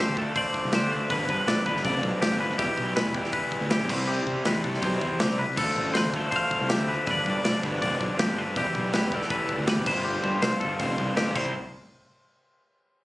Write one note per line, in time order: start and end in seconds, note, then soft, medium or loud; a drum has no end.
0.00 0.15 D3 medium
0.00 0.18 F3 medium
0.00 0.16 A3 medium
0.00 0.16 D4 loud
0.00 0.16 G4 medium
0.00 0.17 C5 medium
0.08 0.22 D2 medium
0.17 0.71 D3 medium
0.17 0.72 F3 medium
0.17 0.72 A3 medium
0.17 0.75 D4 medium
0.17 0.35 A4 medium
0.17 0.23 A4 medium
0.17 kick medium
0.36 0.73 C5 medium
0.36 0.71 D5 loud
0.36 kick loud
0.36 open hi-hat medium
0.54 kick medium
0.65 0.83 C2 medium
0.72 1.09 D3 medium
0.72 1.09 F3 medium
0.72 1.10 A3 medium
0.72 1.13 D4 medium
0.72 0.92 G4 medium
0.72 1.12 C5 loud
0.72 snare loud
0.72 open hi-hat medium
0.83 0.97 D2 loud
0.92 1.09 B4 medium
1.10 1.25 G1 loud
1.10 1.65 G2 medium
1.10 1.65 D3 medium
1.10 1.66 F3 loud
1.10 1.66 B3 medium
1.10 1.65 D4 loud
1.10 1.47 B4 medium
1.10 1.29 B4 medium
1.10 kick loud
1.10 open hi-hat medium
1.28 1.36 G2 medium
1.28 1.81 B4 loud
1.28 kick medium
1.47 1.54 B1 loud
1.47 1.66 D5 medium
1.47 snare loud
1.47 open hi-hat medium
1.66 1.81 G1 loud
1.66 2.19 G2 medium
1.66 2.20 D3 medium
1.66 2.21 F3 medium
1.66 2.23 B3 loud
1.66 2.21 D4 medium
1.66 1.84 B4 medium
1.66 kick medium
1.77 snare soft
1.84 1.99 F1 loud
1.84 2.21 D5 medium
1.84 kick loud
1.84 open hi-hat medium
2.03 2.11 B1 loud
2.03 kick medium
2.20 2.29 G1 loud
2.20 2.57 G2 medium
2.20 2.57 D3 medium
2.20 2.58 F3 medium
2.20 2.59 B3 medium
2.20 2.59 D4 medium
2.20 2.40 G4 medium
2.20 snare loud
2.20 open hi-hat medium
2.31 2.46 G1 medium
2.40 2.58 B4 medium
2.50 2.57 F1 medium
2.57 2.66 E1 loud
2.57 3.16 E3 medium
2.57 3.15 G3 medium
2.57 3.15 B3 medium
2.57 3.13 E4 loud
2.57 2.96 G4 loud
2.57 kick loud
2.57 open hi-hat medium
2.77 3.00 B1 medium
2.77 kick medium
2.96 3.15 B4 medium
2.96 snare loud
2.96 open hi-hat medium
3.06 3.20 E1 medium
3.14 3.69 E3 medium
3.14 3.70 G3 medium
3.14 3.70 B3 medium
3.14 3.69 E4 medium
3.14 3.33 G4 medium
3.14 kick medium
3.24 snare soft
3.32 3.71 B4 medium
3.32 kick loud
3.32 open hi-hat medium
3.52 kick medium
3.61 3.81 D2 medium
3.70 3.88 E3 medium
3.70 3.88 G3 medium
3.70 3.89 B3 medium
3.70 3.90 E4 medium
3.70 3.90 G4 medium
3.70 snare loud
3.70 open hi-hat medium
3.79 3.87 B1 loud
3.89 4.19 C2 loud
3.89 4.43 C3 medium
3.89 4.45 G3 loud
3.89 4.46 C4 loud
3.89 4.46 E4 loud
3.89 4.08 B4 medium
3.89 kick loud
3.89 crash loud
4.07 4.45 G4 medium
4.27 4.34 C3 medium
4.27 kick medium
4.45 4.53 E2 medium
4.45 5.00 C3 medium
4.45 5.01 G3 medium
4.45 5.00 C4 medium
4.45 4.99 E4 loud
4.45 4.64 B4 medium
4.45 snare loud
4.45 open hi-hat medium
4.64 4.79 C2 medium
4.64 4.82 A4 medium
4.64 kick medium
4.74 snare soft
4.82 4.97 B1 loud
4.82 5.20 C5 loud
4.82 kick loud
4.82 open hi-hat medium
5.00 5.09 E2 loud
5.00 5.39 C3 medium
5.00 5.39 G3 medium
5.00 5.38 C4 medium
5.00 5.38 E4 medium
5.00 kick medium
5.20 5.29 C2 medium
5.20 5.39 G4 medium
5.20 snare loud
5.20 open hi-hat medium
5.31 5.45 C2 medium
5.39 5.57 B4 medium
5.49 5.56 C2 medium
5.56 5.65 D2 medium
5.56 6.12 D3 medium
5.56 6.16 F3 medium
5.56 6.13 A3 medium
5.56 6.14 D4 loud
5.56 5.93 A4 medium
5.56 kick loud
5.56 crash loud
5.76 5.98 A1 medium
5.76 kick medium
5.94 6.02 B4 medium
5.94 6.13 C5 medium
5.94 snare loud
5.94 open hi-hat medium
6.04 6.19 D2 medium
6.13 6.68 D3 medium
6.13 6.70 F3 medium
6.13 6.70 A3 medium
6.13 6.72 D4 loud
6.13 6.31 A4 medium
6.13 6.34 C5 medium
6.13 kick medium
6.31 6.69 C5 medium
6.31 kick loud
6.31 open hi-hat medium
6.36 6.54 F5 loud
6.51 6.74 F5 medium
6.51 kick medium
6.61 6.80 C2 medium
6.69 7.06 D3 medium
6.69 7.07 F3 medium
6.69 7.07 A3 medium
6.69 7.10 D4 medium
6.69 6.88 G4 medium
6.69 snare loud
6.69 open hi-hat medium
6.74 7.10 E5 loud
6.80 6.94 D2 medium
6.88 7.06 B4 medium
7.07 7.22 G1 loud
7.07 7.62 G2 medium
7.07 7.62 D3 medium
7.07 7.63 F3 medium
7.07 7.64 B3 medium
7.07 7.63 D4 loud
7.07 7.44 B4 loud
7.07 kick loud
7.07 open hi-hat medium
7.11 7.28 D5 medium
7.26 7.33 G2 medium
7.26 kick medium
7.30 7.80 D5 medium
7.44 7.52 B1 loud
7.44 7.63 D5 medium
7.44 snare loud
7.44 open hi-hat medium
7.63 7.78 G1 loud
7.63 8.17 G2 medium
7.63 8.18 D3 medium
7.63 8.19 F3 loud
7.63 8.19 B3 medium
7.63 8.21 D4 loud
7.63 7.81 B4 medium
7.63 kick medium
7.82 7.97 F1 loud
7.82 8.19 D5 medium
7.82 kick loud
7.82 open hi-hat medium
8.00 8.08 B1 loud
8.00 kick medium
8.19 8.26 G1 loud
8.19 8.55 G2 medium
8.19 8.55 D3 medium
8.19 8.56 F3 medium
8.19 8.56 B3 medium
8.19 8.59 D4 loud
8.19 8.38 G4 medium
8.19 snare loud
8.19 open hi-hat medium
8.27 8.42 G1 medium
8.38 8.57 B4 medium
8.46 8.54 G2 medium
8.56 8.64 E1 loud
8.56 9.11 E3 medium
8.56 9.14 G3 medium
8.56 9.12 B3 medium
8.56 9.11 E4 loud
8.56 8.93 G4 loud
8.56 kick loud
8.56 open hi-hat medium
8.75 8.97 B1 medium
8.75 kick medium
8.93 9.14 G4 medium
8.93 9.13 B4 medium
8.93 snare loud
8.93 open hi-hat medium
9.03 9.18 E1 medium
9.12 9.67 E3 medium
9.12 9.68 G3 medium
9.12 9.67 B3 medium
9.12 9.67 E4 medium
9.12 9.30 G4 medium
9.12 9.69 A4 loud
9.12 kick medium
9.21 snare soft
9.30 9.68 B4 medium
9.30 kick loud
9.30 open hi-hat medium
9.49 kick medium
9.58 9.78 D2 medium
9.67 9.86 E3 medium
9.67 9.88 G3 medium
9.67 9.86 B3 medium
9.67 9.87 E4 medium
9.67 9.86 G4 medium
9.67 9.86 B4 loud
9.67 snare loud
9.67 open hi-hat medium
9.77 9.84 E1 medium
9.86 10.16 G1 loud
9.86 10.41 G2 medium
9.86 10.42 D3 medium
9.86 10.42 F3 medium
9.86 10.43 B3 loud
9.86 10.43 F4 loud
9.86 10.06 B4 medium
9.86 11.13 C5 loud
9.86 kick loud
9.86 crash loud
10.05 10.42 G4 loud
10.24 10.31 G2 medium
10.24 kick medium
10.42 10.50 C2 medium
10.42 10.97 G2 medium
10.42 10.98 D3 medium
10.42 10.98 F3 medium
10.42 10.98 B3 medium
10.42 10.97 F4 loud
10.42 10.60 C5 medium
10.42 snare loud
10.42 open hi-hat medium
10.60 10.76 G1 medium
10.60 10.79 A4 medium
10.60 kick medium
10.79 10.94 F1 loud
10.79 11.16 C5 medium
10.79 kick loud
10.79 open hi-hat medium
10.98 11.06 C2 loud
10.98 11.36 G2 medium
10.98 11.35 D3 medium
10.98 11.35 F3 medium
10.98 11.35 B3 medium
10.98 11.34 F4 medium
10.98 kick medium
11.17 11.25 G1 medium
11.17 11.36 G4 medium
11.17 snare loud
11.17 open hi-hat medium
11.26 11.33 G1 medium
11.35 11.53 C2 medium
11.35 11.50 C3 loud
11.35 11.51 G3 loud
11.35 11.51 C4 loud
11.35 11.51 E4 loud
11.35 11.54 C5 medium
11.35 kick loud
11.35 crash loud